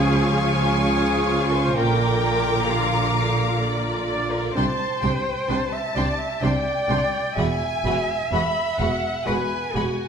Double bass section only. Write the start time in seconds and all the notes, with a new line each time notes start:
Already playing: C#2
1.76 A#1
4.55 C2
5.03 C2
5.49 C2
5.96 C2
6.43 C2
6.89 C2
7.37 E1
7.84 E1
8.32 E1
8.79 E1
9.27 E1
9.75 E1